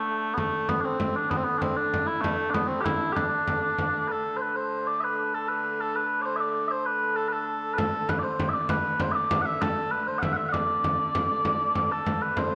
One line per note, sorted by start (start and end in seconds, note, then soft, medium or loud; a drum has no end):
0.00 0.38 D3 medium
0.00 0.34 A3 medium
0.00 0.38 A3 medium
0.34 4.09 D3 medium
0.34 0.38 B3 medium
0.34 frame drum medium
0.38 0.69 A3 medium
0.38 4.09 A3 medium
0.69 0.80 B3 medium
0.69 frame drum medium
0.80 0.85 D4 medium
0.85 1.16 C4 medium
0.85 frame drum soft
1.00 frame drum medium
1.15 1.30 D4 medium
1.15 frame drum soft
1.30 1.37 B3 medium
1.30 frame drum medium
1.37 1.44 C4 medium
1.44 1.58 B3 medium
1.58 1.76 C4 medium
1.58 1.61 D4 medium
1.58 frame drum medium
1.76 2.07 D4 medium
1.76 frame drum soft
1.94 frame drum medium
2.07 2.21 E4 loud
2.07 frame drum soft
2.21 2.50 A3 medium
2.21 frame drum medium
2.50 2.68 B3 medium
2.50 2.54 D4 medium
2.54 frame drum medium
2.68 2.81 C4 medium
2.68 frame drum soft
2.81 3.12 E4 loud
2.81 2.85 G4 loud
2.86 frame drum medium
3.01 frame drum soft
3.12 4.08 D4 medium
3.12 3.16 G4 medium
3.12 frame drum medium
3.32 frame drum soft
3.48 frame drum medium
3.78 frame drum medium
4.08 7.79 D3 medium
4.08 7.79 A3 medium
4.08 4.37 A4 medium
4.08 4.11 B4 medium
4.37 4.41 C5 medium
4.41 4.56 B4 medium
4.56 4.87 C5 medium
4.87 5.00 D5 medium
5.00 5.34 B4 medium
5.00 5.04 E5 medium
5.34 5.48 A4 medium
5.48 5.81 B4 medium
5.81 5.96 A4 medium
5.96 6.22 B4 medium
6.22 6.36 C5 medium
6.22 6.25 D5 medium
6.36 6.40 E5 medium
6.40 6.68 D5 medium
6.68 6.86 C5 medium
6.68 6.71 E5 medium
6.86 7.16 B4 medium
7.16 7.28 A4 medium
7.28 7.33 B4 medium
7.33 7.74 A4 medium
7.74 7.78 B4 medium
7.78 11.45 D3 medium
7.78 11.45 A3 medium
7.78 8.09 A4 medium
7.78 frame drum medium
8.09 8.19 B4 medium
8.09 frame drum medium
8.19 8.23 D5 medium
8.23 8.49 C5 medium
8.23 frame drum soft
8.40 frame drum medium
8.49 8.53 E5 medium
8.53 8.69 D5 medium
8.53 frame drum soft
8.69 9.01 B4 loud
8.69 frame drum medium
9.00 9.12 C5 medium
9.00 frame drum medium
9.12 9.41 D5 medium
9.12 9.15 E5 medium
9.12 frame drum soft
9.31 frame drum loud
9.41 9.46 F#5 loud
9.46 9.62 E5 loud
9.46 frame drum soft
9.62 9.91 A4 medium
9.62 frame drum medium
9.91 10.07 B4 medium
10.07 10.19 C5 medium
10.07 frame drum soft
10.19 10.33 E5 medium
10.19 10.22 F#5 medium
10.23 frame drum medium
10.33 10.49 E5 medium
10.33 10.36 F#5 medium
10.39 frame drum soft
10.49 11.92 D5 medium
10.49 10.52 F#5 medium
10.54 frame drum medium
10.84 frame drum medium
11.15 frame drum medium
11.45 12.55 D3 medium
11.45 12.55 A3 medium
11.45 frame drum medium
11.75 frame drum medium
11.91 12.22 A4 medium
11.91 frame drum soft
12.06 frame drum medium
12.21 12.38 B4 medium
12.21 frame drum soft
12.37 12.55 C5 medium
12.37 frame drum medium